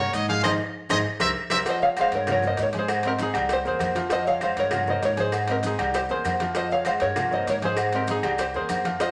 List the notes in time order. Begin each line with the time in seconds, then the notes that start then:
Already playing: G2 C#5
0.00 A#3 A#4 C#5
0.13 G#2 D#5, cowbell, high conga, low agogo, maracas
0.28 G#3 G#4 F5 G#5, cowbell, high conga, maracas
0.43 G#1 D#4 G#4 C5 D#5, cowbell, high conga, high timbale, claves, maracas
0.89 G#1 D#4 G#4 C5 D#5, cowbell, high conga, high timbale, claves, maracas
1.20 C2 G4 A#4 C5 E5, cowbell, high conga, high timbale, claves, maracas
1.50 C2 G4 A#4 C5 E5, cowbell, high conga, high timbale, claves, maracas
1.66 F3 F4 C5 F5, cowbell, high conga, low agogo, maracas
1.70 D#5
1.82 C#5 F5, high conga, maracas
1.97 G#3 G#4 C5, cowbell, high conga, low agogo, claves, maracas
2.01 F5
2.12 G2 A#4, cowbell, high conga, maracas
2.16 C#5
2.27 F3 F4 F5, cowbell, high conga, low conga, low agogo, claves, maracas
2.31 A#4 C#5
2.42 A#3 A#4 C#5, high conga, low conga, maracas
2.47 C5 D#5
2.57 G#2, cowbell, high conga, low timbale, low agogo, maracas
2.62 A#4 C#5
2.73 G#3 G#4 G#5, cowbell, high conga, maracas
2.79 G#4 C5
2.88 cowbell, high conga, low agogo, claves, maracas
3.03 C4 C5 D#5, cowbell, high conga, maracas
3.07 G4 A#4
3.19 D#4 G#4, cowbell, high conga, low agogo, maracas
3.34 C2 G3 G4 G5, cowbell, high conga, low agogo, claves, maracas
3.49 G4 C5, cowbell, high conga, low agogo, maracas
3.65 E2 A#3 G#4 A#4 C5, high conga, maracas
3.79 F2, cowbell, high conga, low timbale, low agogo, claves, maracas
3.95 F3 F4 F5, cowbell, high conga, maracas
4.10 F3 F4 C5 D#5 F5, cowbell, high conga, low agogo, maracas
4.26 C#5 F5, high conga, maracas
4.41 G#3 G#4 C5 F5, cowbell, high conga, low agogo, claves, maracas
4.56 G2 A#4 C#5, cowbell, high conga, maracas
4.71 F3 F4 F5, cowbell, high conga, low conga, low agogo, claves, maracas
4.87 A#3 A#4 C5 C#5 D#5, high conga, low conga, maracas
5.02 G#2 A#4 C#5, cowbell, high conga, low timbale, low agogo, maracas
5.17 G#3 G#4 C5 G#5, cowbell, high conga, maracas
5.32 cowbell, high conga, low agogo, claves, maracas
5.48 C4 G4 A#4 C5 D#5, cowbell, high conga, maracas
5.63 D#4 G#4, cowbell, high conga, low agogo, maracas
5.78 C2 G3 G4 G5, cowbell, high conga, low agogo, claves, maracas
5.94 G4 C5, cowbell, high conga, low agogo, maracas
6.09 E2 A#3 G#4 A#4 C5, high conga, maracas
6.25 F2, cowbell, high conga, low timbale, low agogo, claves, maracas
6.40 F3 F4 F5, cowbell, high conga, maracas
6.55 F3 F4 C5 D#5 F5, cowbell, high conga, low agogo, maracas
6.71 C#5 F5, high conga, maracas
6.85 G#3 G#4 C5 F5, cowbell, high conga, low agogo, claves, maracas
7.00 G2 A#4 C#5, cowbell, high conga, maracas
7.16 F3 F4 F5, cowbell, high conga, low conga, low agogo, claves, maracas
7.31 A#3 A#4 C5 C#5 D#5, high conga, maracas
7.47 G#2 C#5, cowbell, high conga, low timbale, low agogo, maracas
7.51 A#4
7.62 G#3 G#4 C5 G#5, cowbell, high conga, maracas
7.66 G#4
7.77 cowbell, high conga, low agogo, claves, maracas
7.93 C4 G4 A#4 C5 D#5, cowbell, high conga, maracas
8.07 D#4 G#4, cowbell, high conga, low agogo, maracas
8.23 C2 G3 G4 G5, cowbell, high conga, low agogo, claves, maracas
8.38 G4 C5, cowbell, high conga, low agogo, maracas
8.54 E2 A#3 G#4 A#4 C5, high conga, maracas
8.69 F2, cowbell, high conga, low agogo, claves, maracas
8.85 F3 F4 F5, cowbell, high conga, maracas
9.00 F3 F4 C5 D#5 F5, cowbell, high conga, low agogo, maracas